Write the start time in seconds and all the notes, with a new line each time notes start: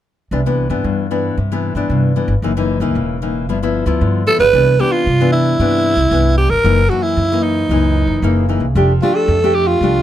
0.31 C2 C3 E3 B3 D4
0.46 E3 B3 D4
0.70 G2 E3 B3 D4
0.84 G2
1.11 E3 B3 D4
1.37 G2 C3
1.52 E3 B3 D4
1.75 G2 E3 B3 D4
1.90 G2 C3
2.16 E3 B3 D4
2.28 G1
2.42 F#1 F#2 E3 A#3 D#4
2.57 E3 A#3 D#4
2.80 C#2 E3 A#3 D#4
2.95 E1 C#3
3.22 E3 A#3 D#4
3.48 G1 G2 F3 B3 E4
3.63 F3 B3 E4
3.86 D2 F3 B3 E4
4.01 G2 D3
4.26 F3 B3 E4 A4
4.39 G1 B4
4.53 C2 C3 E3 B3 D4
4.79 E3 B3 D4 G4
4.92 F4
5.06 G2 C3
5.20 E3 B3 D4
5.32 E4
5.59 G2 C3 E3 B3 D4
5.96 C2
6.11 C2 G2 E3 B3 D4
6.38 G4
6.49 G1 A#4
6.64 F#1 F#2 E3 A#3 D#4
6.90 E3 A#3 D#4 F#4
7.03 E4
7.17 F#2 C#3
7.32 E3 A#3 D#4
7.43 D#4
7.69 C#2 F#2 E3 A#3 D#4
8.07 F#1
8.22 F#1 C#3 E3 A#3 D#4
8.49 E3 A#3 D#4
8.60 C2
8.75 F1 F3 A3 D4 G4
9.02 A3 D4 F4 G4
9.15 A4
9.28 F2 C3
9.43 A3 D4 G4
9.55 G4
9.67 F4
9.81 C2 F3 A3 D4 G4